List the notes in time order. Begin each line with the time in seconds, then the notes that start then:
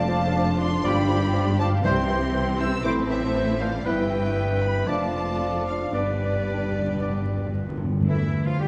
Already playing: F1 F2 A3 D4 F4 C5 F5 A5
0.08 F3 D5
0.33 F3 D5
0.58 F3 D5 A5 C6
0.83 G1 G2 F3 G3 F4 G4 D5 G5 B5
1.09 F3 D5
1.33 F3 D5
1.58 F3 D5 F5 A5
1.84 C2 C3 E3 G3 C4 E4 C5 G5 C6
2.09 E3 C5
2.34 E3 C5
2.60 E3 C5 C6 E6
2.84 A1 A2 E3 A3 E4 A4 C5 B5 D6
3.10 E3 C5 E5
3.35 E3 C5
3.59 E3 C5 D5 F5
3.85 G1 G2 E3 B3 E4 B4 E5 G5
4.62 G5 B5
4.87 F1 F2 F3 A3 D4 F4 A4 D5 F5 A5
5.66 D5 F5
5.92 G1 G2 G3 B3 D4 G4 B4 D5
6.02 G2
6.10 G2
6.26 G2
6.33 G2
6.41 G2
6.50 G2
6.57 G2
6.71 G2
6.79 G2
6.87 G2
6.94 G2
7.00 G2 B3 D4 D5
7.10 G2
7.17 G2
7.25 G2
7.32 G2
7.39 G2
7.47 G2
7.54 G2
7.62 G2
7.69 G2
7.77 G2
7.84 G2
7.92 G2
8.00 G2
8.06 E2 E3 A3 E4 E5
8.46 F2 F3 F4 F5
8.59 G2 G3 G4 G5